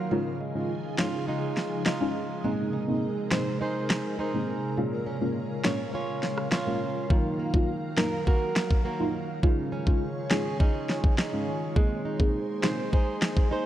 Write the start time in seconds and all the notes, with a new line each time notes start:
Already playing: D#3 F#3 A#3 F4
0.11 C#3 F3 G#3 C#4 D#4 F4 G#4
0.40 G#3
0.55 G#3 C#4 D#4 F4
0.98 G#3 C#4 D#4 F4, finger snap, snare
1.28 G#3 D#4 F4
1.57 snare
1.86 G#3 D#4 F4, finger snap, snare
2.00 G#3 C#4 D#4 F4
2.44 C3 G#3 A#3 C4 D#4 A#4
2.73 D#4
2.88 G#3 A#3 C4 D#4
3.31 G#3 A#3 C4 D#4 C5, finger snap, snare
3.61 D#4 G#4 C5
3.90 finger snap, snare
4.19 D#4 G#4 C5
4.33 G#3 A#3 C4 D#4
4.77 A#2 C#3 G#3 A#3 C#4 F4 F5
5.06 C#4
5.21 G#3 A#3 C#4 F4
5.64 G#3 A#3 C#4 F4 C#5, finger snap, snare
5.94 C#4 F4 C#5
6.23 snare
6.38 cross-stick
6.52 C#4 F4 C#5, finger snap, snare
6.66 G#3 A#3 C#4 F4
7.10 D#3 F#3 A#3 D#4 F4 A#4, kick
7.39 A#3
7.54 F#3 A#3 D#4 F4, kick
7.97 F#3 A#3 D#4 F4 A#4, finger snap, snare
8.27 A#3 F#4 A#4, kick
8.56 finger snap, snare
8.71 kick
8.85 A#3 F#4 A#4
8.99 F#3 A#3 D#4 F4
9.43 C#3 G#3 C#4 D#4 F4 C#5, kick
9.72 C#4
9.87 G#3 C#4 D#4 F4, kick
10.30 G#3 C#4 D#4 F4 G#4, finger snap, snare
10.60 C#4 D#4 G#4, kick
10.89 snare
11.04 kick
11.18 C#4 D#4 G#4, finger snap, snare
11.32 G#3 C#4 D#4 F4
11.76 G#3 A#3 C4 D#4 G#4 C5, kick
12.05 D#4
12.20 A#3 C4 D#4 G#4, kick
12.63 A#3 C4 D#4 G#4 C5, finger snap, snare
12.93 D#4 G#4 C5, kick
13.22 finger snap, snare
13.37 kick
13.51 D#4 G#4 C5